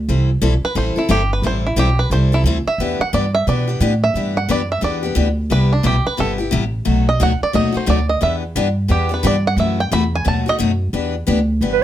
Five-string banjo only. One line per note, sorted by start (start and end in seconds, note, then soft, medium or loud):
0.65 0.77 B4 medium
0.78 0.97 C5 medium
0.98 1.10 E4 medium
1.11 1.31 G4 medium
1.33 1.45 B4 medium
1.47 1.65 C5 medium
1.66 1.78 E4 medium
1.79 1.99 G4 medium
1.99 2.11 B4 medium
2.12 2.32 C5 medium
2.34 2.42 E4 medium
2.67 2.98 E5 medium
3.01 3.13 F#5 loud
3.14 3.34 D5 medium
3.35 3.47 E5 loud
3.49 3.68 D5 medium
4.04 4.34 E5 medium
4.37 4.49 F#5 loud
4.51 4.70 D5 medium
4.72 4.84 E5 medium
4.84 4.96 D5 medium
5.52 5.72 B4 medium
5.73 5.85 D4 medium
5.86 6.06 G4 medium
6.07 6.19 B4 medium
6.20 6.32 A4 medium
7.09 7.21 D#5 loud
7.23 7.42 F#5 medium
7.43 7.55 D5 medium
7.55 7.75 D#5 medium
7.77 7.89 C5 medium
7.90 8.09 D5 medium
8.09 8.22 D#5 medium
8.23 8.35 E5 medium
8.91 9.11 G4 medium
9.14 9.25 B4 medium
9.27 9.46 D5 medium
9.47 9.59 F#5 loud
9.60 9.79 E5 medium
9.80 9.92 G5 medium
9.93 10.13 B5 loud
10.15 10.27 G#5 medium
10.28 10.47 A5 medium
10.49 10.56 D#5 loud